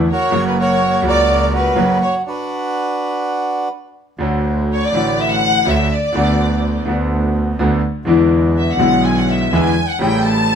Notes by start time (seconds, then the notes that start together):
0.10 F#4 A#4 C#5
0.30 F#1 F#2 C#3 F#3 A#3
0.34 F#4
0.47 B4
0.59 F#4 A#4 C#5
1.02 C#2 C#3 F#3 A#3
1.06 F#4 A#4 D5
1.54 F#4 B4
1.76 F#1 F#2 C#3 F#3 A#3 F#4
2.02 C#5
2.26 D4 F#4 B4
4.18 D2 D3 A3 C#4 F#4
4.73 C#5
4.83 D5
4.92 A1 A2 D3 A3 C#4
4.96 F#4
5.20 E5
5.30 F#5
5.65 D2 D3 A3 C#4 F#4 E5
5.91 D5
6.14 D2 D3 A3 B3 F#4
6.86 D2 D3 A3 B3 F#4
7.59 D2 D3 A3 B3 F#4
8.05 E2 D3 E3 G#3 B3 E4
8.57 E5
8.70 F#5
8.77 B1 B2 D3 G#3 B3
8.81 E4
9.04 G#5
9.18 F#5
9.30 E5
9.52 E2 D3 E3 G#3 B3 E4 G#5
9.89 F#5
9.99 A1 A2 C#3 G3 A3 E4 G5
10.26 A5